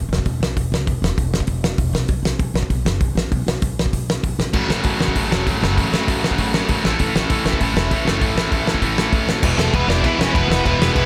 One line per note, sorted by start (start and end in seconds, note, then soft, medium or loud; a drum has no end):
0.09 0.23 E1 medium
0.13 snare medium
0.18 kick medium
0.26 0.39 E1 medium
0.26 kick loud
0.26 open hi-hat soft
0.40 0.54 B1 medium
0.40 snare loud
0.57 0.70 E1 medium
0.57 kick loud
0.57 open hi-hat medium
0.72 0.85 C#2 medium
0.72 snare loud
0.87 1.00 E1 medium
0.87 kick loud
0.87 open hi-hat medium
1.02 1.15 E1 medium
1.02 snare loud
1.18 1.45 E1 medium
1.18 kick loud
1.18 open hi-hat medium
1.34 snare loud
1.40 kick medium
1.47 1.75 E1 medium
1.47 kick medium
1.47 open hi-hat medium
1.64 snare loud
1.78 1.92 E1 medium
1.78 kick loud
1.78 open hi-hat medium
1.93 2.07 B1 medium
1.93 snare loud
2.08 2.22 B1 loud
2.08 kick loud
2.08 open hi-hat medium
2.23 2.37 B1 medium
2.23 snare loud
2.39 2.53 B1 medium
2.39 kick loud
2.39 open hi-hat medium
2.54 2.68 B1 medium
2.54 snare medium
2.63 kick medium
2.70 2.84 B1 medium
2.70 kick medium
2.70 open hi-hat medium
2.85 2.99 F#1 medium
2.85 snare loud
3.01 3.14 B1 medium
3.01 kick loud
3.01 open hi-hat medium
3.15 3.29 A1 medium
3.15 snare loud
3.31 3.45 B1 loud
3.31 kick loud
3.31 open hi-hat medium
3.47 3.60 B1 medium
3.47 snare loud
3.62 3.89 B1 medium
3.62 kick loud
3.62 open hi-hat medium
3.79 snare loud
3.86 kick medium
3.93 4.20 B1 medium
3.93 kick medium
3.93 open hi-hat medium
4.10 snare loud
4.23 4.37 B1 medium
4.23 kick loud
4.23 open hi-hat medium
4.39 4.52 A1 medium
4.39 snare loud
4.53 4.68 A1 loud
4.53 4.71 F#2 medium
4.53 4.70 C#3 medium
4.53 4.70 F#3 medium
4.53 4.71 A3 medium
4.53 4.71 C#4 loud
4.53 4.70 F#4 loud
4.53 4.69 A4 medium
4.53 kick loud
4.53 crash medium
4.69 4.83 A1 medium
4.69 4.85 F#2 medium
4.69 4.85 C#3 medium
4.69 4.86 F#3 loud
4.69 4.82 A3 medium
4.69 4.83 C#4 medium
4.69 4.83 F#4 medium
4.69 4.85 A4 loud
4.69 snare loud
4.83 4.98 A1 medium
4.83 5.02 F#2 medium
4.83 5.01 C#3 medium
4.83 5.02 A3 medium
4.83 5.00 C#4 medium
4.83 4.99 F#4 medium
4.83 4.99 A4 medium
4.83 kick loud
4.83 open hi-hat medium
4.87 5.01 F#3 medium
4.99 5.14 A1 medium
4.99 5.16 F#2 medium
4.99 5.16 C#3 medium
4.99 5.17 F#3 medium
4.99 5.14 A3 medium
4.99 5.15 C#4 medium
4.99 5.15 F#4 medium
4.99 5.17 A4 medium
4.99 snare medium
5.08 kick medium
5.15 5.29 A1 medium
5.15 5.32 F#2 medium
5.15 5.32 C#3 loud
5.15 5.32 F#3 loud
5.15 5.31 A3 medium
5.15 5.30 C#4 medium
5.15 5.30 F#4 medium
5.15 5.29 A4 loud
5.15 kick loud
5.15 open hi-hat medium
5.29 5.45 E1 medium
5.29 5.47 F#3 medium
5.29 5.46 A3 medium
5.29 5.47 C#4 medium
5.29 5.47 F#4 medium
5.29 5.48 A4 medium
5.29 snare loud
5.33 5.47 F#2 medium
5.33 5.47 C#3 medium
5.46 5.60 A1 medium
5.46 5.63 F#2 medium
5.46 5.62 C#3 medium
5.46 5.62 F#3 medium
5.46 5.63 A3 medium
5.46 5.62 C#4 medium
5.46 5.61 F#4 loud
5.46 5.61 A4 medium
5.46 kick loud
5.46 open hi-hat medium
5.61 5.76 F#1 loud
5.61 5.79 F#2 medium
5.61 5.79 C#3 medium
5.61 5.79 F#3 medium
5.61 5.76 A3 medium
5.61 5.76 C#4 medium
5.61 5.77 F#4 medium
5.61 5.78 A4 medium
5.61 snare loud
5.77 5.91 A1 loud
5.77 5.93 F#2 medium
5.77 5.92 C#3 loud
5.77 5.94 A3 loud
5.77 5.93 C#4 medium
5.77 5.91 F#4 loud
5.77 5.91 A4 loud
5.77 kick loud
5.77 open hi-hat medium
5.81 5.92 F#3 loud
5.92 6.06 A1 medium
5.92 6.08 F#2 medium
5.92 6.07 C#3 medium
5.92 6.09 F#3 loud
5.92 6.07 A3 medium
5.92 6.08 C#4 medium
5.92 6.08 F#4 medium
5.92 6.10 A4 medium
5.92 snare loud
6.07 6.34 A1 medium
6.07 6.23 F#2 medium
6.07 6.23 C#3 medium
6.07 6.23 F#3 loud
6.07 6.25 A3 medium
6.07 6.24 C#4 medium
6.07 6.23 F#4 medium
6.07 6.23 A4 loud
6.07 kick loud
6.07 open hi-hat medium
6.24 6.39 F#2 medium
6.24 6.39 C#3 medium
6.24 6.40 F#3 medium
6.24 6.37 A3 medium
6.24 6.38 C#4 medium
6.24 6.37 F#4 medium
6.24 6.39 A4 loud
6.24 snare loud
6.31 kick medium
6.38 6.65 A1 medium
6.38 6.55 F#2 medium
6.38 6.55 C#3 medium
6.38 6.54 F#3 loud
6.38 6.56 A3 medium
6.38 6.54 C#4 loud
6.38 6.54 F#4 medium
6.38 6.53 A4 medium
6.38 kick medium
6.38 open hi-hat medium
6.54 6.70 F#2 medium
6.54 6.70 C#3 medium
6.54 6.71 F#3 loud
6.54 6.68 A3 medium
6.54 6.69 C#4 medium
6.54 6.68 F#4 medium
6.54 6.71 A4 medium
6.54 snare loud
6.69 6.82 A1 medium
6.69 6.84 F#2 medium
6.69 6.85 C#3 medium
6.69 6.83 A3 medium
6.69 6.83 C#4 medium
6.69 6.84 F#4 medium
6.69 6.85 A4 medium
6.69 kick loud
6.69 open hi-hat medium
6.73 6.85 F#3 medium
6.83 6.98 A1 medium
6.83 7.01 A2 medium
6.83 7.01 E3 medium
6.83 7.02 A3 medium
6.83 7.00 A3 loud
6.83 7.01 C#4 loud
6.83 7.00 E4 loud
6.83 6.99 A4 loud
6.83 snare loud
6.99 7.13 A1 loud
6.99 7.15 A2 medium
6.99 7.15 E3 medium
6.99 7.16 A3 loud
6.99 7.15 A3 medium
6.99 7.16 C#4 medium
6.99 7.17 E4 loud
6.99 7.17 A4 loud
6.99 kick loud
6.99 open hi-hat medium
7.15 7.28 A1 medium
7.15 7.31 A2 loud
7.15 7.31 E3 loud
7.15 7.32 A3 medium
7.15 7.30 A3 loud
7.15 7.32 C#4 medium
7.15 7.31 E4 medium
7.15 7.31 A4 medium
7.15 snare loud
7.30 7.43 A1 medium
7.30 7.46 A2 medium
7.30 7.47 E3 medium
7.30 7.46 A3 medium
7.30 7.44 A3 medium
7.30 7.45 C#4 medium
7.30 7.47 E4 medium
7.30 7.47 A4 loud
7.30 kick loud
7.30 open hi-hat medium
7.45 7.59 A1 medium
7.45 7.62 A2 medium
7.45 7.62 E3 medium
7.45 7.61 A3 medium
7.45 7.61 A3 loud
7.45 7.60 C#4 medium
7.45 7.62 E4 medium
7.45 7.59 A4 loud
7.45 snare loud
7.53 kick medium
7.60 7.73 A1 medium
7.60 7.76 A2 medium
7.60 7.78 E3 medium
7.60 7.74 A3 medium
7.60 7.78 A3 loud
7.60 7.75 C#4 medium
7.60 7.77 E4 medium
7.60 7.76 A4 medium
7.60 kick medium
7.60 open hi-hat medium
7.74 7.88 E1 medium
7.74 7.91 A2 medium
7.74 7.92 A3 medium
7.74 7.91 C#4 medium
7.74 7.91 E4 medium
7.74 7.90 A4 medium
7.74 snare loud
7.78 7.91 E3 medium
7.78 7.91 A3 medium
7.91 8.04 A1 medium
7.91 8.07 A2 medium
7.91 8.08 E3 medium
7.91 8.08 A3 medium
7.91 8.03 A3 medium
7.91 8.05 C#4 medium
7.91 8.06 E4 medium
7.91 8.05 A4 loud
7.91 kick loud
7.91 open hi-hat medium
8.05 8.19 F#1 medium
8.05 8.21 A2 medium
8.05 8.22 E3 medium
8.05 8.21 A3 medium
8.05 8.21 C#4 medium
8.05 8.21 E4 medium
8.05 8.19 A4 medium
8.05 snare loud
8.09 8.21 A3 medium
8.20 8.35 A1 loud
8.20 8.36 A2 medium
8.20 8.37 E3 medium
8.20 8.36 A3 loud
8.20 8.34 A3 medium
8.20 8.34 C#4 medium
8.20 8.36 E4 medium
8.20 8.36 A4 loud
8.20 kick loud
8.20 open hi-hat medium
8.35 8.50 A1 medium
8.35 8.53 A2 medium
8.35 8.52 E3 loud
8.35 8.51 A3 medium
8.35 8.52 A3 loud
8.35 8.51 C#4 medium
8.35 8.50 E4 loud
8.35 8.50 A4 loud
8.35 snare loud
8.51 8.79 A1 medium
8.51 8.67 A2 medium
8.51 8.68 E3 medium
8.51 8.64 A3 medium
8.51 8.68 A3 loud
8.51 8.65 C#4 medium
8.51 8.66 E4 medium
8.51 8.66 A4 medium
8.51 kick loud
8.51 open hi-hat medium
8.65 8.83 A2 medium
8.65 8.83 A3 medium
8.65 8.82 A3 medium
8.65 8.82 C#4 medium
8.65 8.81 E4 medium
8.65 8.80 A4 medium
8.65 snare loud
8.69 8.82 E3 medium
8.74 kick medium
8.81 9.09 A1 medium
8.81 8.97 A2 medium
8.81 8.97 E3 medium
8.81 8.98 A3 loud
8.81 8.95 A3 medium
8.81 8.96 C#4 medium
8.81 8.97 E4 medium
8.81 8.97 A4 loud
8.81 kick medium
8.81 open hi-hat medium
8.96 9.13 A2 medium
8.96 9.12 E3 medium
8.96 9.14 A3 medium
8.96 9.12 A3 medium
8.96 9.13 C#4 medium
8.96 9.13 E4 medium
8.96 9.12 A4 medium
8.96 snare loud
9.13 9.26 A1 medium
9.13 9.28 A2 medium
9.13 9.29 E3 medium
9.13 9.28 A3 medium
9.13 9.27 A3 medium
9.13 9.28 C#4 medium
9.13 9.28 E4 medium
9.13 9.29 A4 medium
9.13 kick loud
9.13 open hi-hat medium
9.28 9.42 A1 medium
9.28 9.43 A2 medium
9.28 9.44 E3 medium
9.28 9.42 A3 medium
9.28 9.43 A3 medium
9.28 9.43 C#4 medium
9.28 9.43 E4 medium
9.28 9.44 A4 medium
9.28 snare loud
9.42 9.57 E1 loud
9.42 9.58 E2 medium
9.42 9.57 B2 loud
9.42 9.59 E3 loud
9.42 9.57 E3 loud
9.42 9.58 G#3 loud
9.42 9.58 B3 loud
9.42 9.57 E4 loud
9.42 kick loud
9.42 crash loud
9.42 crash medium
9.57 9.72 E1 medium
9.57 9.73 E2 medium
9.57 9.73 B2 medium
9.57 9.73 E3 loud
9.57 9.71 E3 medium
9.57 9.71 G#3 medium
9.57 9.73 A3 medium
9.57 9.73 B3 medium
9.57 9.74 E4 loud
9.57 9.73 A4 medium
9.57 snare loud
9.72 9.87 E1 medium
9.72 9.88 E2 medium
9.72 9.88 B2 medium
9.72 9.88 E3 loud
9.72 9.87 E3 loud
9.72 9.87 G#3 medium
9.72 9.87 B3 loud
9.72 9.89 B3 medium
9.72 9.86 E4 medium
9.72 9.89 B4 medium
9.72 kick loud
9.72 crash medium
9.77 9.90 G#3 medium
9.87 10.03 E1 loud
9.87 10.03 E2 medium
9.87 10.04 B2 medium
9.87 10.05 E3 loud
9.87 10.02 E3 medium
9.87 10.03 G#3 medium
9.87 10.03 B3 loud
9.87 10.05 D4 loud
9.87 10.04 E4 loud
9.87 10.04 D5 medium
9.87 snare loud
10.03 10.18 D2 medium
10.03 10.19 E2 medium
10.03 10.19 B2 medium
10.03 10.20 E3 medium
10.03 10.18 E3 medium
10.03 10.19 G#3 medium
10.03 10.18 B3 medium
10.03 10.18 E4 medium
10.03 10.21 E4 loud
10.03 kick loud
10.03 crash medium
10.19 10.33 E1 medium
10.19 10.33 E2 medium
10.19 10.33 B2 loud
10.19 10.34 E3 loud
10.19 10.32 E3 medium
10.19 10.33 G#3 loud
10.19 10.34 B3 loud
10.19 10.36 C#4 medium
10.19 10.34 E4 loud
10.19 10.33 C#5 medium
10.19 snare loud
10.33 10.47 E1 loud
10.33 10.49 E2 medium
10.33 10.49 B2 loud
10.33 10.50 E3 loud
10.33 10.49 E3 medium
10.33 10.49 G#3 medium
10.33 10.49 B3 loud
10.33 10.49 B3 medium
10.33 10.47 E4 loud
10.33 10.48 B4 medium
10.33 kick loud
10.33 crash medium
10.48 10.63 E1 medium
10.48 10.64 E2 medium
10.48 10.65 B2 medium
10.48 10.65 E3 medium
10.48 10.63 E3 medium
10.48 10.64 G#3 medium
10.48 10.64 B3 medium
10.48 10.66 B3 loud
10.48 10.65 E4 loud
10.48 10.63 B4 medium
10.48 snare loud
10.64 10.79 E1 loud
10.64 10.81 E2 loud
10.64 10.82 B2 loud
10.64 10.79 E3 loud
10.64 10.80 E3 loud
10.64 10.79 G#3 loud
10.64 10.79 B3 loud
10.64 11.06 B3 medium
10.64 10.78 E4 loud
10.64 11.06 B4 medium
10.64 kick loud
10.64 crash medium
10.79 10.94 E1 loud
10.79 10.95 E2 medium
10.79 10.95 B2 loud
10.79 10.92 E3 medium
10.79 10.96 E3 loud
10.79 10.94 G#3 medium
10.79 10.95 B3 loud
10.79 10.95 E4 loud
10.79 snare loud
10.94 11.06 E1 medium
10.94 11.06 E2 loud
10.94 11.06 B2 loud
10.94 11.06 E3 loud
10.94 11.06 G#3 medium
10.94 11.06 B3 loud
10.94 11.06 E4 loud
10.94 kick loud
10.94 crash medium